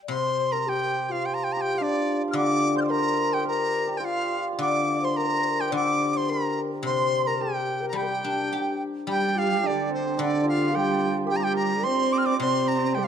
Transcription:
0.03 0.11 D5 medium
0.08 1.79 C3 soft
0.08 0.54 C5 medium
0.08 2.74 C5 medium
0.08 0.54 C6 medium
0.52 0.68 A#4 medium
0.52 2.89 A#4 medium
0.52 0.70 A#5 medium
0.67 1.11 G4 medium
0.67 1.56 G4 medium
0.67 1.09 G5 medium
1.09 1.24 F4 medium
1.09 1.74 F4 medium
1.09 1.27 F5 medium
1.09 1.13 G5 medium
1.26 1.36 G5 medium
1.34 1.45 A#5 medium
1.44 1.54 G5 medium
1.53 1.63 A#5 medium
1.57 3.33 G4 medium
1.57 1.82 G4 medium
1.61 1.80 G5 medium
1.74 4.00 F4 medium
1.74 1.84 F5 medium
1.80 5.53 D4 medium
1.80 2.21 D4 medium
1.80 2.23 D5 medium
2.28 4.50 F5 medium
2.28 2.37 F6 medium
2.33 4.01 D3 medium
2.33 4.58 D5 medium
2.33 2.91 D5 medium
2.33 2.78 D6 loud
2.76 5.03 C5 medium
2.76 2.81 G6 soft
2.81 2.87 D6 soft
2.81 2.83 F6 soft
2.88 3.45 A#4 medium
2.88 3.35 A#5 medium
2.88 2.92 C6 medium
3.33 3.87 G4 medium
3.33 3.46 G5 medium
3.45 5.18 A#4 medium
3.45 3.99 A#4 medium
3.45 3.99 A#5 medium
3.87 5.60 G4 medium
3.97 7.37 F4 medium
3.97 4.06 G5 soft
4.03 4.43 F4 medium
4.03 4.47 F5 medium
4.53 6.75 F5 medium
4.59 5.71 D3 medium
4.59 5.74 D5 medium
4.59 5.01 D5 medium
4.59 5.06 D6 medium
5.02 5.16 C5 medium
5.02 6.17 C5 medium
5.02 5.18 C6 medium
5.16 5.28 A#4 medium
5.16 6.32 A#4 medium
5.16 5.62 A#5 medium
5.26 5.34 C5 medium
5.33 5.41 A#4 medium
5.40 5.50 C5 medium
5.49 5.73 A#4 medium
5.60 7.41 G4 medium
5.60 5.74 G5 medium
5.71 7.39 D3 medium
5.71 6.18 D5 medium
5.71 8.20 D5 medium
5.71 6.13 D6 medium
6.13 6.31 C5 medium
6.13 6.31 C6 medium
6.13 6.19 D6 medium
6.18 6.85 C5 medium
6.29 6.71 A#4 medium
6.29 7.28 A#4 medium
6.29 6.61 A#5 medium
6.83 8.51 C3 soft
6.83 9.50 C5 medium
6.83 7.29 C5 medium
6.83 7.29 C6 medium
7.27 7.39 A#4 medium
7.27 7.83 A#4 medium
7.27 7.43 A#5 medium
7.39 7.83 G4 medium
7.39 7.95 G4 medium
7.39 7.88 G5 medium
7.81 7.97 A#4 medium
7.81 10.67 A#4 medium
7.89 9.06 G3 medium
7.89 7.98 A#5 soft
7.96 8.04 G4 medium
7.96 8.03 G4 medium
7.96 8.82 G5 medium
8.02 8.08 G4 soft
8.02 8.10 A#4 soft
8.08 8.81 G4 medium
8.08 8.17 G4 soft
8.18 8.24 G4 soft
8.24 9.39 D4 soft
8.24 8.32 G4 soft
8.33 8.38 G4 soft
8.38 8.44 G4 soft
8.44 8.50 G4 soft
8.51 8.60 G4 soft
8.51 9.66 G4 soft
8.60 9.07 G4 soft
9.07 10.75 G3 soft
9.07 9.66 G3 medium
9.07 9.15 G4 medium
9.07 9.37 G4 medium
9.07 9.40 G5 medium
9.15 9.20 G4 soft
9.21 9.27 G4 soft
9.27 9.35 G4 soft
9.35 9.57 F4 medium
9.35 9.43 G4 medium
9.35 9.68 F5 medium
9.43 9.52 G4 soft
9.52 10.74 G4 medium
9.58 9.67 F4 soft
9.63 10.20 D3 medium
9.63 10.17 D4 medium
9.63 10.19 D4 medium
9.63 9.93 D5 medium
9.89 13.07 C4 medium
9.94 10.22 C5 medium
10.17 11.84 D3 medium
10.17 10.77 D3 medium
10.17 13.07 D4 medium
10.17 10.46 D4 medium
10.17 10.48 D5 medium
10.43 13.07 F4 medium
10.48 10.74 F4 medium
10.48 10.77 F5 medium
10.72 11.17 G3 medium
10.72 11.26 G4 medium
10.72 10.78 A#4 medium
10.72 11.17 G5 medium
10.77 11.18 G4 medium
11.25 11.39 G4 medium
11.25 11.34 A#4 medium
11.30 11.87 G3 medium
11.30 11.88 G4 medium
11.30 11.38 G5 medium
11.36 12.97 G4 medium
11.36 11.45 A#5 medium
11.44 11.55 G5 loud
11.53 13.07 A#4 medium
11.53 11.85 A#5 medium
11.83 12.40 C4 medium
11.83 12.41 C5 medium
11.83 12.34 C5 medium
11.83 12.14 C6 medium
12.13 12.19 D6 medium
12.18 12.27 F6 medium
12.26 13.07 D5 medium
12.26 12.40 D6 medium
12.37 13.07 C3 soft
12.37 12.99 C4 medium
12.37 12.44 D5 medium
12.37 12.69 C6 medium
12.41 13.07 C5 medium
12.41 13.00 C5 medium
12.68 12.96 A#5 medium
12.95 13.07 G3 medium
12.95 13.07 G4 medium
12.95 13.06 G5 medium
12.99 13.07 G4 medium
13.04 13.07 F5 medium

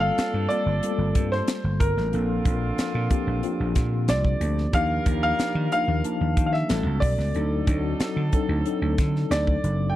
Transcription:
0.00 1.77 F3 medium
0.00 0.49 G3 medium
0.00 0.50 A#3 medium
0.00 0.50 C4 medium
0.00 1.77 D4 medium
0.00 0.51 F4 medium
0.00 0.51 A4 medium
0.00 1.77 A4 medium
0.00 0.51 F5 medium
0.18 muted slap bass stroke soft
0.18 snare loud
0.18 closed hi-hat medium
0.34 0.46 G2 medium
0.49 0.76 G3 medium
0.49 0.76 A#3 medium
0.49 0.76 C4 medium
0.49 0.77 F4 medium
0.49 0.77 A4 medium
0.49 1.27 D5 medium
0.49 closed hi-hat medium
0.66 0.79 G1 medium
0.83 1.88 G3 medium
0.83 0.90 A3 soft
0.83 1.88 C4 medium
0.83 1.88 F4 medium
0.83 1.88 A4 medium
0.83 closed hi-hat medium
0.90 1.91 A#3 medium
0.98 1.11 G1 medium
1.15 1.40 G2 medium
1.15 kick medium
1.15 closed hi-hat medium
1.32 1.82 C5 medium
1.32 snare soft
1.47 snare loud
1.47 closed hi-hat medium
1.64 1.76 G1 medium
1.80 1.93 G1 medium
1.80 3.07 A#4 medium
1.80 kick medium
1.80 closed hi-hat medium
1.97 2.09 A1 medium
1.97 snare soft
2.12 2.38 A#1 loud
2.12 4.38 D3 medium
2.12 2.39 F3 medium
2.12 2.39 A#3 medium
2.12 2.40 C4 medium
2.12 4.38 C4 medium
2.12 2.40 D4 medium
2.12 4.38 F4 medium
2.12 2.40 A4 medium
2.12 closed hi-hat medium
2.45 2.70 A#1 medium
2.45 2.99 F3 medium
2.45 2.99 A#3 medium
2.45 2.99 C4 medium
2.45 2.99 D4 medium
2.45 2.53 A4 medium
2.45 kick medium
2.45 closed hi-hat medium
2.54 3.02 A#4 medium
2.78 muted slap bass stroke soft
2.78 snare loud
2.78 closed hi-hat medium
2.95 3.07 A#2 medium
3.10 3.37 F3 medium
3.10 3.37 A#3 medium
3.10 3.37 C4 medium
3.10 3.37 D4 medium
3.10 3.37 G4 medium
3.10 kick medium
3.10 closed hi-hat medium
3.27 3.40 A#1 medium
3.43 4.49 F3 medium
3.43 4.49 A#3 medium
3.43 4.49 C4 medium
3.43 4.49 D4 medium
3.43 4.49 F4 medium
3.43 closed hi-hat medium
3.60 3.73 A#1 medium
3.75 4.10 A#2 medium
3.75 kick medium
3.75 snare soft
3.75 closed hi-hat medium
4.08 4.33 C2 medium
4.08 4.76 D5 medium
4.08 snare loud
4.08 closed hi-hat medium
4.25 kick medium
4.40 4.66 D2 medium
4.40 closed hi-hat medium
4.58 snare soft
4.72 4.98 D#2 loud
4.72 5.00 F3 medium
4.72 6.33 G3 medium
4.72 5.00 A#3 medium
4.72 5.01 D4 medium
4.72 5.01 D#4 medium
4.72 6.33 F4 medium
4.72 5.01 G4 medium
4.72 6.33 A#4 medium
4.72 5.22 F5 loud
4.72 kick loud
4.72 closed hi-hat medium
5.06 5.31 D#2 medium
5.06 5.60 F3 medium
5.06 5.60 A#3 medium
5.06 5.60 D4 medium
5.06 5.60 D#4 medium
5.06 5.60 G4 medium
5.06 kick medium
5.06 closed hi-hat medium
5.23 5.71 F5 loud
5.39 muted slap bass stroke soft
5.39 snare medium
5.39 closed hi-hat medium
5.55 5.68 D#3 medium
5.72 5.99 F3 medium
5.72 5.99 A#3 medium
5.72 5.99 D4 medium
5.72 5.99 D#4 medium
5.72 5.99 A#4 medium
5.72 6.45 F5 loud
5.72 closed hi-hat medium
5.88 6.00 D#2 medium
6.04 6.70 F3 medium
6.04 6.70 A#3 medium
6.04 6.70 D4 medium
6.04 6.70 D#4 medium
6.04 6.70 A5 medium
6.04 closed hi-hat medium
6.21 6.33 D#2 medium
6.37 6.62 D#3 medium
6.37 kick medium
6.37 closed hi-hat medium
6.46 6.54 F5 medium
6.53 7.04 E5 medium
6.53 snare soft
6.68 6.82 A1 medium
6.68 7.02 F#3 medium
6.68 7.22 G3 medium
6.68 7.22 B3 medium
6.68 7.22 C#4 medium
6.68 7.01 E4 medium
6.68 7.22 F#4 medium
6.68 7.01 A4 medium
6.68 7.23 A4 medium
6.68 snare loud
6.68 closed hi-hat medium
6.86 6.99 C#2 medium
7.00 7.15 B1 medium
7.00 8.28 D5 medium
7.00 kick medium
7.00 open hi-hat medium
7.18 7.31 C#2 medium
7.18 snare soft
7.35 7.60 D2 loud
7.35 7.61 F#3 medium
7.35 9.60 F#3 medium
7.35 7.61 C4 medium
7.35 7.62 D4 medium
7.35 9.60 D#4 medium
7.35 7.62 D#4 medium
7.35 9.60 A4 medium
7.35 7.62 A4 medium
7.35 closed hi-hat medium
7.67 7.92 D2 medium
7.67 8.20 F#3 medium
7.67 8.21 C4 medium
7.67 8.20 D4 medium
7.67 8.21 D#4 medium
7.67 8.21 F#4 medium
7.67 kick medium
7.67 closed hi-hat medium
8.00 muted slap bass stroke soft
8.00 snare medium
8.00 closed hi-hat medium
8.16 8.29 D3 medium
8.32 8.59 F#3 medium
8.32 8.60 C4 medium
8.32 8.60 D4 medium
8.32 8.60 D#4 medium
8.32 8.60 A4 medium
8.32 kick medium
8.32 closed hi-hat medium
8.49 8.62 D2 medium
8.66 9.71 F#3 medium
8.66 9.71 C4 medium
8.66 9.71 D4 medium
8.66 9.71 D#4 medium
8.66 9.72 A4 medium
8.66 closed hi-hat medium
8.82 8.94 D2 medium
8.98 9.24 D3 medium
8.98 kick medium
8.98 snare soft
8.98 closed hi-hat medium
9.16 snare soft
9.31 9.56 D2 medium
9.31 9.91 D5 medium
9.31 snare loud
9.31 closed hi-hat medium
9.47 kick medium
9.64 9.96 F#1 medium
9.64 closed hi-hat medium
9.90 9.96 G5 medium

